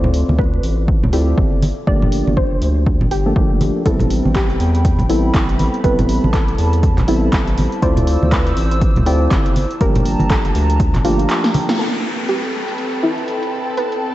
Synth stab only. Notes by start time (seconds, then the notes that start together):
Already playing: C4 E4 F4 A4 D5
1.13 C4 E4 F4 A4 D5
1.87 F3 A3 A#3 D4 G4
3.26 F3 A3 A#3 D4 A4
3.36 F3 A3 A#3 D4 G4
3.85 G3 B3 C4 E4 A4
5.09 G3 B3 C4 E4 A4
5.84 G3 B3 C4 E4 A4
7.08 G3 B3 C4 E4 A4
7.82 C4 E4 F4 A4 D5
9.06 C4 E4 F4 A4 D5
9.80 F3 G3 A#3 D4 G4
11.04 F3 A3 A#3 D4 G4